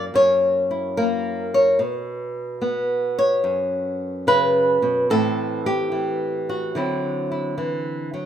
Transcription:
Already playing: F#2 A#3 E4 F#4
0.14 F#2 C#5
0.71 E4
0.97 A#3 A#4
1.54 C#5
1.79 B2
2.62 B3
3.19 C#5
3.44 F#2
4.27 C#3 B4
4.82 B2
5.10 A2 E3 C4 E4 A4
5.66 G4
5.92 E3
6.49 F#4
6.75 D3 F#3 C4 E4
7.31 E4
7.58 E3
8.14 F#3

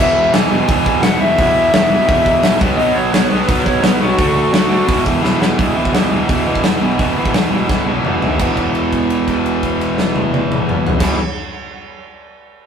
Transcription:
0.00 E1 E2 B2 E3 E5
0.16 E1
0.34 E1 E2 B2 E3 G#5, snare, open hi-hat
0.50 E1 E2 B2 E3
0.68 E1 E2 B2 E3 G#5, kick, open hi-hat
0.86 E1, kick
1.03 E1 E2 B2 E3 F#5, snare, open hi-hat
1.20 E1 E2 B2 E3 E5
1.38 E1 E2 B2 E3, kick, open hi-hat
1.56 E1
1.72 E1 E2 B2 E3, snare, open hi-hat
1.90 E2 B2 E3
2.07 E1 E2 B2 E3, kick, open hi-hat
2.26 E1, kick
2.43 A#1 E2 B2 E3, snare, open hi-hat
2.60 B1 B2 F#3 B3, kick
2.78 B1 B2 F#3 B3 D#5, open hi-hat
2.95 B1 C#5
3.12 B1 B2 F#3 B3, snare, open hi-hat
3.30 B1 B2 F#3 B3 B4
3.48 B1 B2 F#3 B3 B4, kick, open hi-hat
3.65 B1 C#5, kick
3.82 B1 B2 F#3 B3 B4, snare, open hi-hat
4.00 B1 B2 F#3 B3 F#4
4.18 D2 D3 A3 D4, kick, open hi-hat
4.35 D2
4.52 D2 D3 A3 D4, snare, open hi-hat
4.69 D3 A3 D4
4.87 E1 E2 B2 E3, kick, open hi-hat
5.06 E1, kick
5.22 E1 E2 B2 E3, snare
5.40 E1 E2 B2 E3, snare
5.58 E1 E2 B2 E3, kick, open hi-hat
5.75 D2 E2 B2 E3
5.85 kick
5.93 E1 E2 B2 E3, snare, open hi-hat
6.10 D2 E2 B2 E3
6.28 D2 E2 B2 E3, kick, open hi-hat
6.46 E1 E2 B2 E3
6.55 kick
6.64 E1 E2 B2 E3, snare, open hi-hat
6.81 B1 E2 B2 E3
6.99 E1 E2 B2 E3, kick, open hi-hat
7.17 D2 E2 B2 E3
7.25 kick
7.33 E2 B2 E3, snare, open hi-hat
7.51 E1 E2 B2 E3
7.69 B1 E2 B2 E3, kick, snare
7.86 B1 E2 B2 E3, high tom
8.03 E1 E2 B2 E3, mid tom
8.21 D2 E2 B2 E3, floor tom
8.37 E1 E2 B2, kick, crash
8.42 E3
8.57 kick, crash
8.75 crash
8.93 kick, crash
9.10 crash
9.28 kick, crash
9.46 crash
9.63 kick, crash
9.81 crash
9.98 snare
10.16 high tom
10.34 high tom
10.52 mid tom
10.69 mid tom
10.87 floor tom
10.99 E1 E2 B2, kick, snare, crash
11.03 E3

